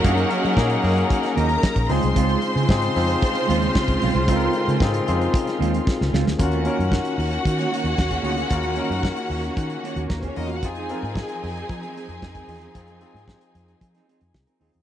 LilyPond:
<<
  \new Staff \with { instrumentName = "String section" } { \time 4/4 \key ees \dorian \tempo 4 = 113 <ges' ges''>2~ <ges' ges''>8 <bes' bes''>4 <c'' c'''>8~ | <c'' c'''>1~ | <c'' c'''>2.~ <c'' c'''>8 r8 | <ges' ges''>1~ |
<ges' ges''>2. \tuplet 3/2 { <bes bes'>16 <c' c''>16 <des' des''>16 <ees' ees''>16 <f' f''>16 <ges' ges''>16 } | <aes' aes''>1~ | <aes' aes''>2.~ <aes' aes''>8 r8 | }
  \new Staff \with { instrumentName = "Tine electric piano" } { \time 4/4 \key ees \dorian <bes des' ees' aes'>4 <bes des' ees' aes'>8 <bes des' ees' aes'>4. r8 <c' ees' f' aes'>8~ | <c' ees' f' aes'>8 r8 <c' ees' f' aes'>8 <c' ees' f' aes'>4. r4 | <c' ees' f' a' bes'>4 <c' ees' f' aes'>8 <c' ees' f' aes'>4. r4 | <des' f' ges' bes'>8 <des' ees' ges' bes'>4. r4. <des' f' ges' aes'>8 |
<des' f' ges' bes'>8 <des' ees' ges' bes'>4. r4. <des' f' ges' bes'>8 | <c' ees' f' aes'>8 <c' ees' f' bes'>4. r4. <c' ees' f' aes'>8 | <c' ees' f' aes'>8 <c' ees' f' aes'>4. r4. <c' ees' f' aes'>8 | }
  \new Staff \with { instrumentName = "Clean electric guitar" } { \time 4/4 \key ees \dorian <bes ees' ges'>8 r16 <bes ees' aes'>16 r4. <bes ees' ges'>16 r8. <aes c' f'>16 r16 | <aes c' f'>8 r16 <aes c' aes'>16 r4. <aes c' f'>16 r8. <aes c' f'>16 r16 | <aes c' f'>8 r16 <aes c' aes'>16 r4. <aes c' f'>16 r8. <aes c' f'>16 r16 | r16 <bes des' ges'>16 <bes des' ges'>16 r4. <bes des' ges'>16 <bes des' ges'>16 r8 <bes des' aes'>16 <bes des' ges'>16 r16 |
r16 <bes des' ges'>16 <bes des' ges'>16 r4. r16 <bes des' ges'>16 <bes des' ges'>16 r16 <bes des' aes'>16 <bes des' ges'>16 r16 | r16 <c' ees' aes'>16 <c' ees' aes'>16 r4. <c' ees' aes'>16 <c' ees' aes'>16 r8 <c' ees' bes'>16 <c' ees' aes'>16 r16 | r16 <c' ees' aes'>16 <c' ees' aes'>16 r4. <c' ees' aes'>16 <c' ees' aes'>16 r8 <c' ees' bes'>16 <c' ees' aes'>16 r16 | }
  \new Staff \with { instrumentName = "String section" } { \time 4/4 \key ees \dorian <ges des' ees' bes'>2.~ <ges des' ees' bes'>8 <des aes c' f'>8~ | <des aes c' f'>1~ | <des aes c' f'>1 | <ees bes des' ges'>1~ |
<ees bes des' ges'>1 | <f c' ees' aes'>1~ | <f c' ees' aes'>1 | }
  \new Staff \with { instrumentName = "Fingered electric bass" } { \clef bass \time 4/4 \key ees \dorian ges,8 r16 ges16 bes,8 ges,8 r8 ees,8 r16 bes,,16 des,16 c,16 | des,8 r16 des16 aes,8 f,8 r8 ees,8 r16 des,16 ces,16 c,16 | des,8 r16 des16 aes,8 f,8 r8 ees,8 r16 des,16 des,16 d,16 | ees,8. ges,8 r16 ees,8 ees8 r16 ees,16 ees,8 d,8 |
ees,8. ges,8 r16 ees,8 ees8 r16 ees,16 ees,8 fes,8 | f,8. aes,8 r16 f,8 f8 r16 f,16 f,8 fes,8 | f,8. aes,8 r16 f,8 f8 r16 f,16 c,16 r16 ees,16 fes,16 | }
  \new DrumStaff \with { instrumentName = "Drums" } \drummode { \time 4/4 <hh bd>16 hh16 hh16 hh16 <bd sn>16 hh16 hho16 hh16 <hh bd>16 <hh sn>16 hh16 hh16 <bd sn>16 <hh bd>16 hho16 hh16 | <hh bd>16 hh16 hh16 hh16 <bd sn>16 hh16 hho16 hh16 <hh bd>16 hh16 hh16 hh16 <bd sn>16 <hh bd>16 hho16 hh16 | <hh bd>16 hh16 hh16 hh16 <bd sn>16 hh16 hh16 hh16 <hh bd>16 <hh sn>16 hh16 hh16 <bd sn>16 sn16 sn16 sn16 | <hh bd>16 hh16 hh16 hh16 <bd sn>16 hh16 hho16 hh16 <hh bd>16 <hh sn>16 hh16 hh16 <bd sn>16 <hh bd>16 hho16 hh16 |
<hh bd>16 hh16 hh16 hh16 <bd sn>16 hh16 hho16 hh16 <hh bd>16 hh16 hh16 hh16 <bd sn>16 <hh bd>16 hho16 hh16 | <hh bd>16 hh16 hh16 hh16 <bd sn>16 hh16 hho16 hh16 <hh bd>16 hh16 hh16 hh16 <bd sn>16 <hh bd>16 hho16 hh16 | <hh bd>16 hh16 hh16 hh16 <bd sn>16 hh16 hh16 hh16 <hh bd>16 <hh sn>16 hh16 hh16 <bd sn>16 hh16 hho16 hh16 | }
>>